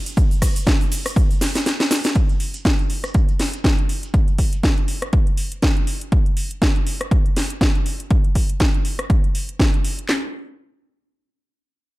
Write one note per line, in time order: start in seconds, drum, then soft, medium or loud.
0.06 closed hi-hat medium
0.06 shaker medium
0.06 shaker soft
0.17 kick loud
0.17 closed hi-hat medium
0.17 shaker medium
0.17 shaker soft
0.31 closed hi-hat soft
0.31 shaker soft
0.42 kick medium
0.42 cross-stick medium
0.42 open hi-hat loud
0.42 ride medium
0.42 shaker medium
0.56 closed hi-hat medium
0.56 shaker medium
0.56 shaker soft
0.67 kick loud
0.67 snare loud
0.67 closed hi-hat medium
0.67 shaker medium
0.67 shaker soft
0.81 closed hi-hat soft
0.81 shaker soft
0.92 open hi-hat medium
0.92 ride medium
0.92 shaker medium
1.06 cross-stick medium
1.06 closed hi-hat medium
1.06 shaker medium
1.06 shaker soft
1.16 kick loud
1.16 closed hi-hat medium
1.16 shaker medium
1.16 shaker soft
1.31 closed hi-hat soft
1.31 shaker soft
1.41 snare medium
1.41 open hi-hat loud
1.41 ride medium
1.41 shaker medium
1.55 snare medium
1.55 closed hi-hat medium
1.55 shaker medium
1.55 shaker soft
1.66 snare medium
1.66 closed hi-hat medium
1.66 shaker medium
1.66 shaker soft
1.80 snare medium
1.80 closed hi-hat soft
1.80 shaker soft
1.91 snare loud
1.91 open hi-hat medium
1.91 ride medium
1.91 shaker medium
2.04 snare medium
2.04 closed hi-hat medium
2.04 shaker medium
2.04 shaker soft
2.15 kick loud
2.15 closed hi-hat medium
2.15 shaker medium
2.29 closed hi-hat soft
2.29 shaker soft
2.40 open hi-hat loud
2.54 closed hi-hat medium
2.54 shaker medium
2.65 kick loud
2.65 snare loud
2.65 closed hi-hat medium
2.65 shaker medium
2.79 closed hi-hat soft
2.79 shaker soft
2.90 open hi-hat medium
3.04 cross-stick medium
3.04 closed hi-hat medium
3.04 shaker medium
3.14 kick loud
3.14 closed hi-hat medium
3.29 closed hi-hat soft
3.29 shaker soft
3.39 snare medium
3.39 open hi-hat loud
3.54 closed hi-hat medium
3.54 shaker medium
3.64 kick loud
3.64 snare loud
3.64 closed hi-hat medium
3.78 closed hi-hat soft
3.78 shaker soft
3.89 open hi-hat medium
4.03 closed hi-hat medium
4.03 shaker medium
4.14 kick loud
4.14 closed hi-hat soft
4.14 shaker medium
4.28 closed hi-hat soft
4.28 shaker soft
4.38 kick medium
4.38 open hi-hat loud
4.53 closed hi-hat medium
4.53 shaker medium
4.63 kick loud
4.63 snare loud
4.63 closed hi-hat medium
4.77 closed hi-hat soft
4.77 shaker soft
4.88 open hi-hat medium
5.02 cross-stick medium
5.02 closed hi-hat medium
5.02 shaker medium
5.13 kick loud
5.13 closed hi-hat medium
5.27 closed hi-hat soft
5.27 shaker soft
5.37 open hi-hat loud
5.52 closed hi-hat medium
5.52 shaker medium
5.62 kick loud
5.62 snare loud
5.62 closed hi-hat soft
5.77 closed hi-hat soft
5.87 open hi-hat loud
6.01 closed hi-hat soft
6.01 shaker medium
6.12 kick loud
6.12 closed hi-hat soft
6.26 closed hi-hat soft
6.26 shaker soft
6.37 open hi-hat loud
6.51 closed hi-hat soft
6.51 shaker medium
6.62 kick loud
6.62 snare loud
6.62 closed hi-hat soft
6.76 closed hi-hat soft
6.87 open hi-hat loud
7.01 cross-stick medium
7.01 closed hi-hat medium
7.11 kick loud
7.11 closed hi-hat soft
7.26 closed hi-hat soft
7.36 snare medium
7.36 open hi-hat loud
7.50 closed hi-hat soft
7.61 kick loud
7.61 snare loud
7.61 closed hi-hat medium
7.75 closed hi-hat soft
7.86 open hi-hat loud
8.00 closed hi-hat soft
8.10 kick loud
8.10 closed hi-hat soft
8.24 closed hi-hat soft
8.35 kick medium
8.35 open hi-hat loud
8.49 closed hi-hat soft
8.60 kick loud
8.60 snare loud
8.60 closed hi-hat soft
8.74 closed hi-hat soft
8.85 open hi-hat loud
8.99 cross-stick medium
8.99 closed hi-hat soft
9.10 kick loud
9.10 closed hi-hat soft
9.24 closed hi-hat soft
9.35 open hi-hat loud
9.49 closed hi-hat soft
9.60 kick loud
9.60 snare loud
9.60 closed hi-hat soft
9.74 closed hi-hat soft
9.84 open hi-hat loud
9.99 closed hi-hat soft
10.09 snare loud
10.09 clap medium